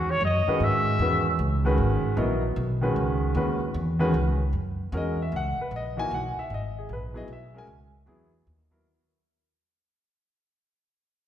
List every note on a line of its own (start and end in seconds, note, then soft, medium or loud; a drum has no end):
0.00 0.20 E2 medium
0.00 0.12 F#4 medium
0.11 0.23 C#5 medium
0.21 0.45 F#2 medium
0.25 0.65 D#5 medium
0.48 0.97 D#3 medium
0.48 0.97 G#3 medium
0.48 0.98 C#4 medium
0.48 0.98 F#4 medium
0.48 0.98 B4 medium
0.48 muted upright bass stroke soft
0.60 0.98 G#2 medium
0.60 1.41 E5 loud
0.99 1.37 E2 medium
0.99 1.24 D#3 medium
0.99 1.24 G#3 medium
0.99 1.24 C#4 medium
0.99 1.24 F#4 medium
0.99 1.24 B4 medium
1.39 1.77 C#2 medium
1.65 2.15 D#3 medium
1.65 2.15 G#3 medium
1.65 2.15 C#4 medium
1.65 2.15 F#4 medium
1.65 2.16 B4 medium
1.78 2.02 G#1 medium
2.03 muted upright bass stroke soft
2.16 2.55 A#1 medium
2.16 2.40 F#3 medium
2.16 2.41 B3 medium
2.16 2.41 E4 medium
2.16 2.41 A#4 medium
2.16 2.41 D#5 medium
2.56 2.95 B1 medium
2.81 3.32 D#3 medium
2.81 3.32 G#3 medium
2.81 3.33 C#4 medium
2.81 3.33 F#4 medium
2.81 3.33 B4 medium
2.96 3.34 C#2 medium
3.35 3.73 D#2 medium
3.35 3.59 D#3 medium
3.35 3.59 G#3 medium
3.35 3.59 C#4 medium
3.35 3.59 F#4 medium
3.35 3.59 B4 medium
3.74 4.13 E2 medium
3.99 4.13 D#3 medium
3.99 4.13 G#3 medium
3.99 4.13 C#4 medium
3.99 4.14 F#4 medium
3.99 4.14 B4 medium
4.14 4.52 C#2 medium
4.53 4.91 F#2 medium
4.92 5.30 E2 medium
4.92 5.16 G#3 medium
4.92 5.16 C#4 medium
4.92 5.16 F#4 medium
4.92 5.17 A#4 medium
4.97 5.20 D#5 medium
5.22 5.33 E5 medium
5.32 5.56 C#2 medium
5.36 5.59 F#5 medium
5.58 5.73 B4 medium
5.58 muted upright bass stroke soft
5.71 6.09 A#1 medium
5.76 5.99 D#5 medium
5.97 6.09 E3 medium
5.97 6.09 A#3 medium
5.97 6.09 D#4 medium
5.97 6.09 F#4 medium
5.97 6.11 G#5 loud
6.11 6.35 B1 medium
6.11 6.37 F#5 medium
6.37 6.51 E5 medium
6.37 muted upright bass stroke soft
6.50 6.88 G#1 medium
6.54 6.77 D#5 medium
6.78 6.90 G#4 medium
6.89 7.27 A#1 medium
6.89 7.16 B4 medium
7.14 7.26 F#3 medium
7.14 7.26 B3 medium
7.14 7.27 E4 medium
7.14 7.27 G#4 medium
7.14 7.29 D#5 medium
7.28 7.66 B1 medium
7.33 7.56 E5 medium
7.54 7.66 G#3 medium
7.54 7.66 C#4 medium
7.54 7.67 F#4 medium
7.54 7.67 A#4 medium
7.58 7.65 G#5 medium
7.67 8.05 C#2 medium
8.06 8.45 E2 medium
8.06 8.30 F#3 medium
8.06 8.30 B3 medium
8.06 8.30 E4 medium
8.06 8.31 G#4 medium
8.47 8.84 D#2 medium
8.71 8.85 F#3 medium
8.71 8.85 B3 medium
8.71 8.85 E4 medium
8.71 8.85 A#4 medium